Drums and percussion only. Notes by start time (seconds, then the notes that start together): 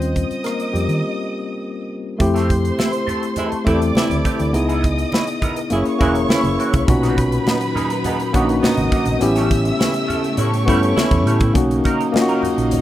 0.02 closed hi-hat
0.16 kick, closed hi-hat
0.31 closed hi-hat
0.44 cross-stick, closed hi-hat
0.60 closed hi-hat
0.76 closed hi-hat
0.89 closed hi-hat
2.20 kick, closed hi-hat, muted conga
2.36 snare, closed hi-hat
2.49 kick, closed hi-hat, muted conga
2.65 closed hi-hat
2.79 snare, high conga
2.93 closed hi-hat
3.07 closed hi-hat, low conga
3.23 closed hi-hat
3.36 closed hi-hat, muted conga, low conga
3.52 closed hi-hat
3.67 kick, closed hi-hat, muted conga
3.82 closed hi-hat
3.95 snare, high conga
4.10 closed hi-hat, high conga
4.25 kick, closed hi-hat
4.39 closed hi-hat, high conga
4.54 closed hi-hat, muted conga
4.69 closed hi-hat
4.84 kick, closed hi-hat
4.98 closed hi-hat
5.12 snare, high conga
5.27 closed hi-hat
5.42 kick, closed hi-hat, low conga
5.56 closed hi-hat
5.70 closed hi-hat, muted conga
5.85 closed hi-hat
6.01 kick, closed hi-hat, muted conga, low conga
6.15 closed hi-hat
6.29 snare, high conga
6.43 closed hi-hat, high conga
6.60 closed hi-hat
6.73 kick, closed hi-hat, high conga
6.88 kick, closed hi-hat, muted conga
7.03 snare, closed hi-hat
7.18 kick, closed hi-hat
7.32 closed hi-hat
7.47 snare, high conga
7.61 closed hi-hat
7.76 closed hi-hat, low conga
7.90 closed hi-hat
8.04 closed hi-hat, muted conga, low conga
8.20 closed hi-hat
8.34 kick, closed hi-hat, muted conga
8.49 closed hi-hat
8.63 snare, high conga
8.77 closed hi-hat, high conga
8.92 kick, closed hi-hat
9.06 closed hi-hat, high conga
9.21 closed hi-hat, muted conga
9.36 snare, closed hi-hat
9.51 kick, closed hi-hat
9.65 closed hi-hat
9.81 snare, high conga
9.94 closed hi-hat
10.10 closed hi-hat, low conga
10.24 closed hi-hat
10.37 closed hi-hat, muted conga
10.54 closed hi-hat
10.68 kick, closed hi-hat, muted conga, low conga
10.83 closed hi-hat
10.97 snare, high conga
11.11 kick, closed hi-hat, high conga
11.27 closed hi-hat
11.40 kick, closed hi-hat, high conga
11.55 kick, closed hi-hat, muted conga
11.71 closed hi-hat
11.84 kick, closed hi-hat, muted conga
12.01 closed hi-hat
12.14 snare, high conga
12.29 closed hi-hat
12.43 closed hi-hat, low conga
12.58 closed hi-hat
12.71 closed hi-hat, muted conga, low conga